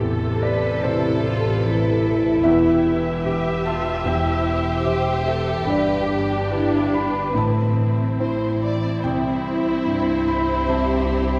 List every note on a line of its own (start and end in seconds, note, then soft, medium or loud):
0.00 2.41 A1 soft
0.00 1.32 E2 soft
0.00 2.48 A2 soft
0.00 2.41 C3 medium
0.00 2.48 C3 soft
0.00 0.41 A4 soft
0.00 2.41 A4 medium
0.00 0.43 A4 medium
0.00 4.03 B4 soft
0.00 0.39 E5 medium
0.42 1.23 A4 soft
0.42 0.84 B4 medium
0.42 0.81 D5 medium
0.83 2.48 B2 soft
0.83 2.41 C3 soft
0.83 1.24 E4 soft
0.83 2.41 A4 soft
0.83 2.01 C5 medium
1.23 1.63 F4 soft
1.23 2.03 A4 soft
1.63 2.49 E3 soft
1.63 3.25 E4 medium
2.04 2.48 A4 soft
2.44 5.64 E1 medium
2.44 4.03 E2 medium
2.44 4.04 E2 medium
2.44 7.31 G4 medium
2.44 3.62 E5 medium
2.44 5.64 E5 medium
2.85 3.64 G4 soft
3.25 4.10 B2 soft
3.25 3.66 G4 medium
3.25 4.03 G4 soft
3.25 4.03 B4 soft
3.65 4.06 F4 soft
3.65 4.45 G4 soft
3.65 4.04 A5 medium
4.05 5.71 E2 soft
4.05 5.64 E2 soft
4.05 4.87 E4 medium
4.05 5.65 C5 medium
4.05 5.24 G5 medium
4.46 5.25 G4 soft
4.86 5.71 E3 soft
4.86 5.26 G4 soft
4.86 5.64 G4 soft
4.86 5.64 C5 soft
5.26 6.07 G4 soft
5.26 5.68 A4 soft
5.26 5.65 E5 medium
5.66 7.35 G1 medium
5.66 7.37 G2 soft
5.66 7.30 G2 soft
5.66 7.30 D4 medium
5.66 6.09 B4 soft
5.66 6.90 D5 medium
5.71 8.08 B4 soft
6.08 6.50 G4 soft
6.08 6.91 G4 soft
6.50 7.38 D3 soft
6.50 6.92 E4 soft
6.50 7.31 G4 soft
6.50 7.31 B4 soft
6.92 7.35 D4 soft
6.92 7.38 G4 soft
6.92 7.33 B5 medium
7.34 8.83 A1 soft
7.34 8.99 A2 soft
7.34 9.07 A2 soft
7.34 8.61 C4 soft
7.34 11.39 C4 soft
7.34 11.39 E4 soft
7.34 8.17 A5 soft
7.77 11.39 E5 soft
8.18 9.06 E3 soft
8.18 9.00 E4 soft
8.18 8.59 C5 soft
8.18 9.00 C5 soft
8.61 11.39 C4 soft
8.61 9.04 D5 soft
9.02 11.39 C2 soft
9.02 11.39 C3 soft
9.02 10.65 E4 soft
9.02 11.39 C5 soft
9.02 10.24 G5 medium
9.45 11.39 G4 soft
9.86 11.18 G2 soft
9.86 10.67 G3 soft
10.27 10.66 B5 medium
10.68 11.39 G3 soft
10.68 11.39 C4 soft
10.68 11.39 G4 soft
10.68 11.39 C5 soft
10.68 11.39 E5 soft
10.68 11.39 A5 medium